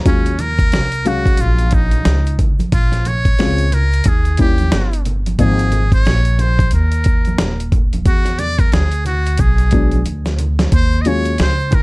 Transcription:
0.05 upright bass D#2, upright piano F#3 G#3 C#4 F4, muted trumpet C#4, kick, closed hi-hat, shaker
0.25 closed hi-hat, shaker
0.39 muted trumpet A#4, closed hi-hat, high conga, low conga, shaker
0.58 kick, closed hi-hat, shaker
0.72 upright bass C2, snare, closed hi-hat, shaker
0.92 closed hi-hat, shaker
1.05 upright piano F#3 G#3 C#4 F5, muted trumpet F#4, closed hi-hat, low conga, shaker
1.25 kick, closed hi-hat, shaker
1.37 upright bass A#1, muted trumpet F4, closed hi-hat, shaker
1.58 closed hi-hat, shaker
1.71 muted trumpet D#4, kick, closed hi-hat, shaker
1.91 closed hi-hat, high conga, shaker
2.05 upright bass C#2, snare, closed hi-hat, shaker
2.26 closed hi-hat, shaker
2.39 kick, closed hi-hat, low conga, shaker
2.59 muted upright bass stroke, closed hi-hat, high conga, shaker
2.72 upright bass A#1, muted trumpet F4, kick, closed hi-hat, shaker
2.92 snare, closed hi-hat, shaker
3.05 muted trumpet C#5, closed hi-hat, high conga, low conga, shaker
3.25 kick, closed hi-hat, shaker
3.39 upright bass C#2, upright piano G#3 C4 C#4 F4, snare, closed hi-hat, shaker
3.58 closed hi-hat, shaker
3.72 muted trumpet A#4, closed hi-hat, low conga, shaker
3.92 closed hi-hat, shaker
4.04 upright bass D#2, kick, closed hi-hat, shaker
4.08 muted trumpet G#4
4.25 closed hi-hat, shaker
4.37 upright piano G3 A#3 C#4 E4, muted trumpet G4, kick, closed hi-hat, shaker
4.58 closed hi-hat, high conga, shaker
4.72 upright bass G1, snare, closed hi-hat, shaker
4.93 closed hi-hat, shaker
5.05 closed hi-hat, low conga, shaker
5.26 closed hi-hat, high conga, shaker
5.39 upright bass G#1, upright piano F3 A#3 C4 D#4, muted trumpet G#4, kick, closed hi-hat, shaker
5.59 closed hi-hat, shaker
5.72 closed hi-hat, high conga, low conga, shaker
5.92 muted trumpet C#5, kick, closed hi-hat, shaker
6.05 upright bass A#1, snare, closed hi-hat, shaker
6.25 closed hi-hat, shaker
6.38 muted trumpet C5, closed hi-hat, low conga, shaker
6.59 kick, closed hi-hat, shaker
6.71 upright bass D#2, muted trumpet A#4, closed hi-hat, shaker
6.92 closed hi-hat, shaker
7.04 kick, closed hi-hat, shaker
7.25 closed hi-hat, high conga, shaker
7.38 upright bass D#1, snare, closed hi-hat, shaker
7.60 closed hi-hat, shaker
7.72 kick, closed hi-hat, low conga, shaker
7.93 closed hi-hat, high conga, shaker
8.05 upright bass E2, muted trumpet F#4, kick, closed hi-hat, shaker
8.25 snare, closed hi-hat, shaker
8.39 muted trumpet D5, closed hi-hat, high conga, low conga, shaker
8.59 muted trumpet A#4, kick, closed hi-hat, shaker
8.72 upright bass D2, muted trumpet G#4, snare, closed hi-hat, shaker
8.92 closed hi-hat, shaker
9.05 muted trumpet F#4, closed hi-hat, low conga, shaker
9.25 closed hi-hat, shaker
9.38 upright bass B1, muted trumpet G#4, kick, closed hi-hat, shaker
9.58 closed hi-hat, shaker
9.71 upright piano F#3 G#3 B3 D4, kick, closed hi-hat, shaker
9.91 closed hi-hat, high conga, shaker
10.05 upright bass D2, closed hi-hat, shaker
10.26 snare, closed hi-hat, shaker
10.39 closed hi-hat, low conga, shaker
10.59 snare, closed hi-hat, high conga, shaker
10.72 upright bass D#2, muted trumpet C5, kick, closed hi-hat, shaker
10.92 shaker
11.02 upright piano F#3, muted trumpet D#5, closed hi-hat, low conga, shaker
11.06 upright piano G#3 C#4 F4, muted trumpet C#5
11.25 closed hi-hat, shaker
11.38 upright bass C#2, muted trumpet C5, snare, closed hi-hat, shaker
11.60 shaker
11.71 muted trumpet A#4, kick, closed hi-hat, low conga, shaker

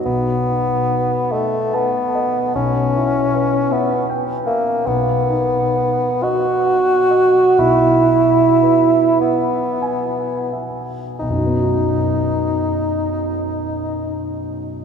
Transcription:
0.06 grand piano B1, bassoon B3
0.49 grand piano D#4
0.92 grand piano B4
1.32 bassoon A3, grand piano D#5
1.73 bassoon B3, grand piano A5
2.15 grand piano D#5
2.55 grand piano B1, bassoon C#4
2.96 grand piano E4
3.34 grand piano B4
3.72 bassoon B3, grand piano E5
4.09 grand piano G5
4.46 bassoon A#3, grand piano E5
4.86 grand piano B1, bassoon B3
5.30 grand piano D#4
5.77 grand piano B4
6.23 bassoon F#4, grand piano D#5
6.67 grand piano F#5
7.11 grand piano D#5
7.58 grand piano B1, bassoon E4
8.09 grand piano E4
8.62 grand piano B4
9.19 bassoon B3, grand piano E5
9.82 grand piano G#5
10.53 grand piano E5
11.19 grand piano B1, bassoon D#4
11.30 grand piano F#2
11.38 grand piano F#3
11.46 grand piano B3
11.53 grand piano D#4
11.62 grand piano F#4

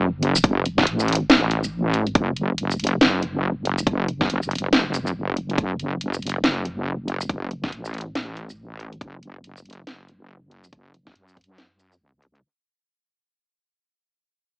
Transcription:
Already playing: wobble bass F#1
0.23 closed hi-hat
0.36 closed hi-hat, shaker
0.44 kick, closed hi-hat
0.66 closed hi-hat
0.78 kick, snare
0.87 wobble bass A1, closed hi-hat
1.00 shaker
1.08 closed hi-hat
1.13 closed hi-hat
1.15 closed hi-hat
1.30 snare, closed hi-hat
1.51 closed hi-hat
1.64 shaker
1.94 closed hi-hat
2.07 closed hi-hat
2.15 wobble bass F#1, kick, closed hi-hat
2.36 closed hi-hat
2.58 closed hi-hat
2.71 shaker
2.80 closed hi-hat
2.84 closed hi-hat
2.87 closed hi-hat
3.01 wobble bass F#1, snare, closed hi-hat
3.23 closed hi-hat
3.65 closed hi-hat
3.78 closed hi-hat, shaker
3.87 kick, closed hi-hat
4.08 closed hi-hat
4.21 kick, snare
4.30 wobble bass F#1, closed hi-hat
4.43 shaker
4.51 closed hi-hat
4.55 closed hi-hat
4.58 closed hi-hat
4.73 snare, closed hi-hat
4.94 closed hi-hat, shaker
5.07 shaker
5.15 wobble bass F#1
5.37 closed hi-hat
5.50 closed hi-hat
5.58 wobble bass F#1, kick, closed hi-hat
5.80 closed hi-hat
6.01 closed hi-hat
6.14 shaker
6.22 closed hi-hat
6.27 closed hi-hat
6.29 closed hi-hat
6.44 wobble bass F#1, snare, closed hi-hat
6.65 closed hi-hat
7.08 closed hi-hat
7.21 closed hi-hat, shaker
7.29 kick, closed hi-hat
7.51 closed hi-hat
7.64 kick, snare
7.72 wobble bass A1, closed hi-hat
7.85 shaker
7.94 closed hi-hat
7.98 closed hi-hat
8.01 closed hi-hat
8.15 snare, closed hi-hat
8.37 closed hi-hat
8.50 shaker
8.80 closed hi-hat
8.93 closed hi-hat
9.01 wobble bass F#1, kick, closed hi-hat
9.23 closed hi-hat
9.44 closed hi-hat
9.57 shaker
9.66 closed hi-hat
9.70 closed hi-hat
9.73 closed hi-hat
9.87 wobble bass F#1, snare, closed hi-hat
10.08 closed hi-hat
10.51 closed hi-hat
10.64 closed hi-hat, shaker
10.73 kick, closed hi-hat
10.94 closed hi-hat
11.07 kick, snare
11.15 wobble bass F#2, closed hi-hat
11.28 shaker
11.37 kick, closed hi-hat
11.41 closed hi-hat
11.44 closed hi-hat
11.58 snare, closed hi-hat
11.80 closed hi-hat, shaker
11.92 shaker
12.01 wobble bass C#2
12.23 closed hi-hat
12.35 closed hi-hat

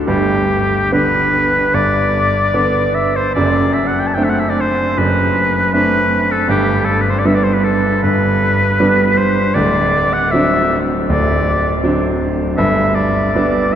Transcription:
Already playing: grand piano D3
0.07 grand piano G1 G2, oboe G4
0.92 grand piano D3 B3 D4, oboe B4
1.74 grand piano G1 G2, oboe D5
2.54 grand piano D3 B3 D4
2.95 oboe E5
3.16 oboe C5
3.34 grand piano F#1 F#2, oboe D5
3.74 oboe E5
3.87 oboe F#5
4.00 oboe G5
4.07 oboe A5
4.14 grand piano A3 C4 D4, oboe G5
4.24 oboe E5
4.30 oboe F#5
4.39 oboe E5
4.50 oboe D5
4.60 oboe C5
4.97 grand piano F#1 F#2, oboe B4
5.74 grand piano A3 C4 D4, oboe B4
6.31 oboe A4
6.48 grand piano G1 G2, oboe G4
6.85 oboe A4
7.01 oboe B4
7.10 oboe C5
7.19 oboe D5
7.25 grand piano G3 B3 D4, oboe E5
7.35 oboe D5
7.44 oboe C5
7.54 oboe B4
7.64 oboe A4
8.03 grand piano G1 G2, oboe B4
8.80 grand piano G3 B3 D4
9.18 oboe C5
9.54 grand piano D1 D2, oboe D5
10.13 oboe F#5
10.31 grand piano F#3 C4 D4, oboe E5
11.09 grand piano D1 D2, oboe D5
11.84 grand piano F#3 C4 D4
12.57 grand piano G1 G2, oboe E5
12.95 oboe D5
13.36 grand piano G3 B3 D4

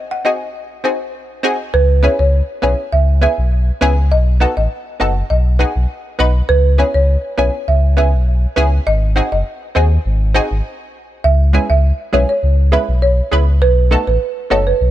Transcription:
0.11 marimba F#5
0.25 synth stab C4 D#4 F#4 G#4, marimba D#5
0.84 synth stab C4 D#4 F#4 G#4, marimba C5
1.43 synth stab C4 D#4 F#4 G#4
1.74 sub bass C#2, marimba B4
2.03 synth stab B3 C#4 E4 G#4, marimba C#5
2.19 sub bass C#2, marimba C#5
2.62 sub bass B1, synth stab B3 C#4 E4 G#4, marimba C#5
2.92 sub bass C#2, marimba E5
3.21 synth stab B3 C#4 E4 G#4, marimba E5
3.38 sub bass B1
3.81 sub bass C#2, synth stab B3 C#4 E4 G#4
4.11 sub bass B1, marimba D#5
4.40 synth stab B3 D#4 F#4 A4, marimba F#5
4.57 sub bass A1, marimba D#5
5.00 sub bass F#1, synth stab B3 D#4 F#4 A4, marimba F#5
5.30 sub bass B1, marimba D#5
5.59 synth stab B3 D#4 F#4 G#4, marimba F#5
5.76 sub bass B1
6.19 sub bass B1, synth stab B3 D#4 F#4 B4, marimba D#5
6.49 sub bass C#2, marimba B4
6.78 synth stab B3 C#4 E4 G#4, marimba C#5
6.94 sub bass C#2, marimba C#5
7.38 sub bass B1, synth stab B3 C#4 E4 G#4, marimba C#5
7.68 sub bass C#2, marimba E5
7.97 synth stab B3 C#4 E4 G#4, marimba E5
8.13 sub bass B1
8.56 sub bass C#2, synth stab B3 C#4 E4 G#4
8.87 sub bass G#1, marimba D#5
9.16 synth stab C4 D#4 F#4 G#4, marimba F#5
9.32 sub bass F#1, marimba D#5
9.75 sub bass D#2, synth stab C4 D#4 F#4 G#4, marimba C5
10.05 sub bass G#1
10.34 synth stab C4 D#4 F#4 G#4
10.51 sub bass G#1
11.24 sub bass C#2, marimba E5
11.53 synth stab G#3 B3 C#4 E4 G#4
11.70 sub bass C#2, marimba E5
12.13 sub bass B1, synth stab G#3 B3 C#4 E4 G#4, marimba C#5
12.29 marimba C#5
12.43 sub bass C#2
12.72 synth stab G#3 B3 C#4 E4 B4, marimba E5
12.88 sub bass B1
13.02 marimba C#5
13.31 sub bass C#2, synth stab G#3 B3 C#4 E4 B4
13.62 sub bass B1, marimba B4
13.91 synth stab A3 B3 D#4 F#4 A4
14.07 sub bass A1, marimba B4
14.50 sub bass F#1, synth stab A3 B3 D#4 F#4 A4, marimba C#5
14.67 marimba B4
14.81 sub bass B1

